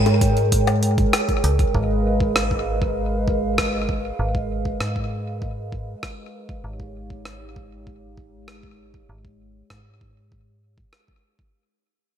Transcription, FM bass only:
0.00 1.06 G#2 medium
1.44 1.65 C#2 medium
1.75 4.12 G#1 medium
4.19 4.73 G#1 loud
4.81 5.96 G#2 medium
6.64 9.02 G#1 medium
9.09 9.63 G#1 loud
9.71 10.85 G#2 medium

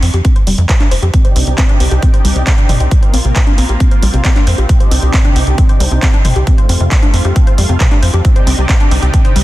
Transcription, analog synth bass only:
0.02 0.10 F2 medium
0.14 0.22 F2 medium
0.47 0.55 F1 medium
0.58 0.66 F2 medium
0.91 0.99 F1 medium
1.03 1.10 F2 medium
1.36 1.44 C2 medium
1.47 1.55 C2 medium
1.80 1.88 C2 medium
1.91 1.99 C2 medium
2.25 2.33 C2 medium
2.36 2.44 C2 medium
2.69 2.77 G1 medium
2.80 2.88 C2 medium
3.14 3.22 A#1 medium
3.25 3.33 A#1 medium
3.58 3.66 A#1 medium
3.69 3.77 A#1 medium
4.03 4.10 A#1 medium
4.14 4.22 A#1 medium
4.47 4.55 F2 medium
4.58 4.66 A#1 medium
4.91 4.99 C2 medium
5.03 5.10 C2 medium
5.36 5.44 C2 medium
5.47 5.55 C2 medium
5.80 5.88 C2 medium
5.91 5.99 C2 medium
6.25 6.33 G1 medium
6.36 6.44 C2 medium
6.69 6.77 F2 medium
6.80 6.88 F2 medium
7.14 7.22 F2 medium
7.25 7.33 F2 medium
7.58 7.66 F2 medium
7.69 7.77 F2 medium
8.03 8.10 F2 medium
8.14 8.22 F2 medium
8.47 8.55 C2 medium
8.58 8.66 C2 medium
8.91 8.99 C2 medium
9.02 9.10 C2 medium
9.36 9.44 C2 medium

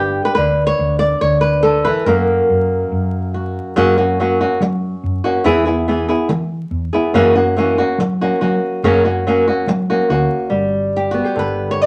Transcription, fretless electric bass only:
0.00 0.19 G1 medium
0.37 0.70 D2 medium
0.79 1.13 D2 medium
1.22 1.89 D2 medium
2.06 2.40 F#2 medium
2.50 2.83 F#2 medium
2.92 3.59 F#2 medium
3.76 4.43 F#2 medium
4.60 4.94 F#3 medium
5.03 5.20 F#2 medium
5.44 6.12 E2 loud
6.29 6.63 E3 medium
6.71 6.88 E2 medium
7.14 7.81 F#2 loud
7.98 8.32 F#3 loud
8.42 8.58 F#3 medium
8.83 9.50 F#2 loud
9.67 10.01 F#3 medium
10.09 10.26 D2 medium
10.51 11.18 G1 medium
11.36 11.86 G1 medium

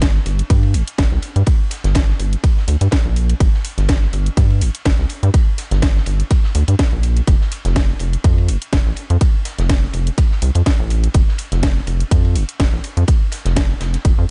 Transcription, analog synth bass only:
0.00 0.20 G1 loud
0.26 0.42 G1 medium
0.50 0.76 G2 loud
0.74 0.83 G1 medium
0.99 1.07 G1 medium
1.12 1.19 C2 medium
1.36 1.43 G2 loud
1.84 2.13 G1 loud
2.19 2.36 G1 medium
2.68 2.76 D2 medium
2.81 2.88 G2 medium
3.05 3.34 A#1 loud
3.40 3.49 G1 loud
3.78 4.07 G1 loud
4.13 4.29 G1 medium
4.37 4.63 G2 loud
4.61 4.70 G1 medium
4.86 4.94 G1 medium
4.99 5.06 C2 medium
5.23 5.30 G2 loud
5.71 6.00 G1 loud
6.07 6.23 G1 medium
6.55 6.63 D2 medium
6.68 6.75 G2 medium
6.92 7.21 A#1 medium
7.28 7.36 F1 loud
7.65 7.94 F1 loud
8.00 8.16 F1 medium
8.24 8.50 F2 loud
8.49 8.57 F1 medium
8.73 8.81 F1 medium
8.86 8.93 A1 medium
9.10 9.17 F2 loud
9.59 9.87 F1 loud
9.94 10.10 F1 medium
10.42 10.51 C2 medium
10.55 10.62 F2 medium
10.79 11.08 A1 loud
11.15 11.23 F1 loud
11.52 11.81 F1 loud
11.87 12.03 F1 medium
12.11 12.37 F2 loud
12.35 12.44 F1 loud
12.60 12.68 F1 medium
12.73 12.80 A1 medium
12.97 13.04 F2 loud
13.46 13.74 F1 loud
13.81 13.97 F1 medium
14.05 14.13 F1 medium
14.18 14.25 F2 loud

